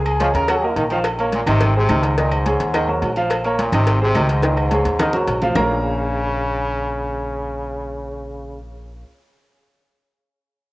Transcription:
Already playing: upright bass C#2, grand piano G#3 G#4 G#5
0.06 trombone G#4, high conga, low agogo, claves
0.20 trombone section F3, grand piano C#4 C#5 D#5, cowbell, high conga, low agogo
0.34 upright bass D#2, trombone section C#3, trombone A#4, cowbell, high conga
0.48 grand piano F#3 F#4 F#5, cowbell, high conga, low agogo, claves
0.63 grand piano A#3 A#4 D#5, high conga
0.76 upright bass A#1, trombone section D#3, cowbell, high conga, low agogo
0.90 trombone section D#3, grand piano F3 F4 F5, high conga, low agogo
1.04 cowbell, high conga, low agogo, claves
1.19 grand piano A#3 A#4 C#5, high conga, low agogo
1.32 trombone A#2, cowbell, high conga, low agogo
1.46 upright bass G#1, trombone C3, grand piano D#3 D#4 D#5, cowbell, high conga, low conga, low agogo, claves
1.61 cowbell, high conga, low conga, low agogo
1.75 trombone C3, grand piano G#3 G#4 C5, high conga
1.89 upright bass C#2, grand piano D#3 D#4 D#5, cowbell, high conga, low agogo, claves
2.03 trombone G#2, cowbell, low agogo
2.18 trombone A#2, grand piano D#3 D#4 D#5, cowbell, high conga
2.32 trombone G#2, high conga, low agogo, claves
2.46 grand piano G#3 G#4 C#5, cowbell, high conga, low agogo
2.60 upright bass D#2, cowbell
2.74 grand piano D#3 D#4 D#5, cowbell, high conga, low agogo, claves
2.89 grand piano F#3 F#4 A#4, high conga
3.02 upright bass A#1, cowbell, high conga, low timbale, low agogo
3.16 grand piano F3 F4 F5, high conga, low agogo
3.30 cowbell, high conga, low agogo, claves
3.45 grand piano A#3 A#4 C#5, high conga, low agogo
3.59 trombone A#2, cowbell, high conga, low agogo
3.72 upright bass G#1, trombone C3, grand piano D#3 D#4 D#5, cowbell, high conga, low conga, low agogo, claves
3.87 cowbell, high conga, low agogo
4.01 trombone C3, grand piano G#3 G#4 C5, high conga
4.14 upright bass C#2, grand piano D#3 D#4 D#5, cowbell, high conga, low timbale, low agogo, claves
4.29 trombone G#2, cowbell, high conga, low agogo
4.42 trombone A#2, grand piano D#3 D#4 D#5, cowbell, high conga, high timbale
4.57 trombone G#2, high conga, high timbale, low agogo, claves
4.71 grand piano G#3 G#4 C#5, cowbell, high conga, high timbale, low agogo
4.85 upright bass D#2, cowbell, high conga
4.99 grand piano D#3 D#4 D#5, cowbell, low conga, low agogo, claves
5.13 grand piano F#3 F#4 A#4, low conga
5.27 upright bass A#1, cowbell, low agogo
5.42 grand piano F3 F4 F5, low conga, low timbale, low agogo
5.55 upright bass A#1, trombone C#3, grand piano A#3 F4 A#4 C#5 F5 A#5, low bongo, low conga, low timbale, claves

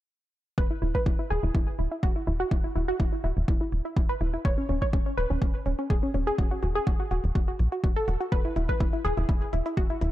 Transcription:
0.58 analog synth bass E1, synth pluck B4, kick
0.71 synth pluck E4, closed hi-hat
0.82 analog synth bass E1, synth pluck E4, closed hi-hat
0.95 synth pluck B4, kick, closed hi-hat
1.06 analog synth bass E1, synth pluck E4, kick
1.19 synth pluck E4, closed hi-hat
1.30 analog synth bass E1, synth pluck G#4, closed hi-hat
1.43 analog synth bass E1, synth pluck E4, closed hi-hat
1.55 analog synth bass E1, synth pluck E4, kick
1.67 closed hi-hat
1.79 analog synth bass E1, synth pluck E4, closed hi-hat
1.92 synth pluck E4, closed hi-hat
2.03 analog synth bass E1, synth pluck F#4, kick
2.16 synth pluck E4, closed hi-hat
2.27 analog synth bass E1, synth pluck E4, closed hi-hat
2.40 synth pluck F#4, closed hi-hat
2.51 analog synth bass E1, synth pluck E4, kick
2.64 synth pluck E4, closed hi-hat
2.76 analog synth bass E1, synth pluck E4, closed hi-hat
2.88 synth pluck F#4, closed hi-hat
3.00 analog synth bass E1, synth pluck E4, kick
3.13 synth pluck E4, closed hi-hat
3.24 analog synth bass E1, synth pluck E4, closed hi-hat
3.37 analog synth bass E1, closed hi-hat
3.48 analog synth bass E1, synth pluck E4, kick
3.61 synth pluck E4, closed hi-hat
3.72 analog synth bass E1, closed hi-hat
3.85 synth pluck E4, closed hi-hat
3.96 analog synth bass E1, synth pluck E4, kick, closed hi-hat
4.09 synth pluck B4, closed hi-hat
4.21 analog synth bass E1, synth pluck E4, closed hi-hat
4.34 synth pluck E4, closed hi-hat
4.45 analog synth bass E1, synth pluck C#5, kick
4.58 synth pluck C#4, closed hi-hat
4.69 analog synth bass E1, synth pluck C#4, closed hi-hat
4.82 synth pluck C#5, kick, closed hi-hat
4.93 analog synth bass E1, synth pluck C#4, kick, closed hi-hat
5.06 synth pluck C#4, closed hi-hat
5.17 analog synth bass E1, synth pluck B4, closed hi-hat
5.30 analog synth bass E1, synth pluck C#4, closed hi-hat
5.42 analog synth bass E1, synth pluck C#4, kick, closed hi-hat
5.54 closed hi-hat
5.66 analog synth bass E1, synth pluck C#4, closed hi-hat
5.79 synth pluck C#4, closed hi-hat
5.90 analog synth bass E1, synth pluck G#4, kick
6.03 synth pluck C#4, closed hi-hat
6.14 analog synth bass E1, synth pluck C#4, closed hi-hat
6.27 synth pluck G#4, closed hi-hat
6.38 analog synth bass E1, synth pluck F#4, kick, closed hi-hat
6.51 synth pluck F#4, closed hi-hat
6.63 analog synth bass E1, synth pluck F#4, closed hi-hat
6.75 synth pluck G#4, closed hi-hat
6.87 analog synth bass E1, synth pluck F#4, kick, closed hi-hat
7.00 synth pluck F#4, closed hi-hat
7.11 analog synth bass E1, synth pluck F#4, closed hi-hat
7.24 analog synth bass E1, closed hi-hat
7.35 analog synth bass E1, synth pluck F#4, kick, closed hi-hat
7.48 synth pluck F#4, closed hi-hat
7.59 analog synth bass B1, closed hi-hat
7.72 synth pluck F#4, closed hi-hat
7.84 analog synth bass E1, synth pluck F#4, kick, closed hi-hat
7.96 synth pluck A4, closed hi-hat
8.08 analog synth bass E1, synth pluck F#4, closed hi-hat
8.21 synth pluck F#4, closed hi-hat
8.32 analog synth bass E1, synth pluck B4, kick, closed hi-hat
8.45 synth pluck E4, closed hi-hat
8.56 analog synth bass E1, synth pluck E4, closed hi-hat
8.69 synth pluck B4, kick, closed hi-hat
8.80 analog synth bass E1, synth pluck E4, kick, closed hi-hat
8.93 synth pluck E4, closed hi-hat
9.05 analog synth bass E1, synth pluck G#4, closed hi-hat
9.17 analog synth bass E1, synth pluck E4, closed hi-hat
9.29 analog synth bass E1, synth pluck E4, kick, closed hi-hat
9.42 closed hi-hat
9.53 analog synth bass E1, synth pluck E4, closed hi-hat
9.66 synth pluck E4, closed hi-hat
9.77 analog synth bass E1, synth pluck F#4, kick, closed hi-hat
9.90 synth pluck E4, closed hi-hat
10.01 analog synth bass E1, synth pluck E4, closed hi-hat

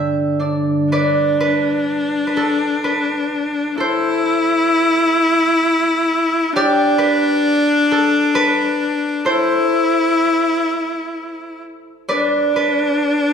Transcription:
Already playing: harp G2 D3 B3 E5 G5, vibraphone D5
0.39 harp D4 D5
0.90 viola D4, harp B4 D5
1.40 harp B4
2.27 harp B4
2.37 harp A4
2.84 harp B4
3.76 viola E4, harp A4
3.80 harp C5
6.53 viola D4, harp G4 D5
6.98 harp B4
7.92 harp A4
8.35 harp B4
9.25 viola E4, harp A4 C5
12.09 viola D4, harp B4 D5
12.56 harp B4

